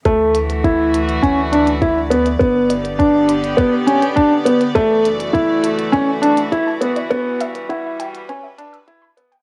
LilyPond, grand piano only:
\new Staff \with { instrumentName = "Grand piano" } { \time 4/4 \key d \major \tempo 4 = 102 a4 e'4 cis'8 d'8 e'8 b8 | b4 d'4 b8 cis'8 d'8 b8 | a4 e'4 cis'8 d'8 e'8 b8 | b4 e'4 cis'8 d'8 e'8 b8 | }